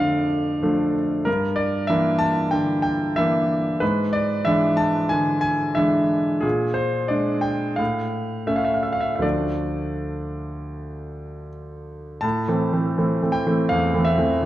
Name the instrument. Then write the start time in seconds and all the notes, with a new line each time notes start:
grand piano
Already playing: F2 D3 F3 A3 D4 D5 E5 F5
0.63 F3 A3 D4
1.25 G2 A#4
1.56 D5
1.87 E3 A#3 D4 E5
2.19 A5
2.51 D3 G5
2.82 G5
3.16 E3 A#3 D4 E5
3.80 G#2 B4
4.13 D5
4.45 E3 G#3 D4 E5
4.77 A5
5.09 D3 G#5
5.41 G#5
5.75 E3 G#3 D4 E5
6.41 A#2 G#4
6.74 C5
7.08 G#3 D4 D5
7.41 G5
7.76 A2 F5
8.47 A3 C#4 E5
8.56 F5
8.64 E5
8.74 F5
8.83 E5
8.93 F5
9.00 E5
9.15 D2 E5
9.20 F3 A3 D4 D5
12.21 A2 A5
12.48 E3 A3 C4
12.73 E3 A3 C4
12.98 E3 A3 C4
13.22 E3 A3 C4
13.32 G5
13.46 E3 A3 C4
13.69 E2 F5
13.94 E3 A3 C4
14.04 E5
14.18 E3 A3 C4
14.42 E3